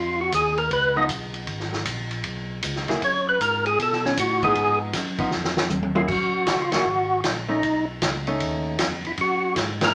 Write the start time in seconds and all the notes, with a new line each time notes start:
Already playing: F2 F4
0.21 F#4
0.32 D#2 G#4, kick, hi-hat pedal, ride
0.58 A#4, ride
0.71 C#2 B4, kick, ride
0.96 F3 B3 D#4 D#5
1.09 B1, kick, hi-hat pedal, ride
1.34 ride
1.47 G#1, kick, ride
1.60 snare
1.73 snare
1.85 A#1, kick, hi-hat pedal, ride
2.11 ride
2.24 B1, kick, ride
2.63 C#2, kick, hi-hat pedal, ride
2.76 snare
2.88 C#2 F#3 A#3 E4 G#4, snare, ride
3.02 F#2 C#5, kick, ride
3.29 B4
3.40 G#2 A#4, kick, hi-hat pedal, ride
3.66 G#4, ride
3.79 B2 A4, kick, ride
3.92 snare
4.05 C#4, snare
4.17 A2 F#4, kick, hi-hat pedal, ride
4.42 F3 B3 D#4 G#4, kick, ride
4.55 G#2, kick, ride
4.93 F#2, kick, snare, hi-hat pedal, ride
5.18 F3 B3 D#4, kick, ride
5.31 F2, snare
5.44 snare
5.57 snare
5.70 D#2, hi-hat pedal, high tom
5.83 high tom
5.95 F#3 A#3 E4 F4 G#4, high tom
6.08 F#2 F#4, kick, crash
6.47 F#1, kick, snare, hi-hat pedal, ride
6.62 F4
6.72 F#3 A#3 E4 F#4 G#4, snare, ride
6.86 G#1
7.24 A#1, kick, snare, hi-hat pedal, ride
7.48 A3 C#4 D#4
7.63 B1, kick, ride
8.02 C#2, kick, snare, hi-hat pedal, ride
8.27 A3 C#4 D#4, ride
8.40 D#2, kick, ride
8.79 F2, kick, snare, hi-hat pedal, ride
9.04 F2 E4, ride
9.17 F#2 F#4, kick, ride
9.56 G#2, kick, snare, hi-hat pedal, ride
9.81 F#3 A#3 E4 G#4 A#4, snare, ride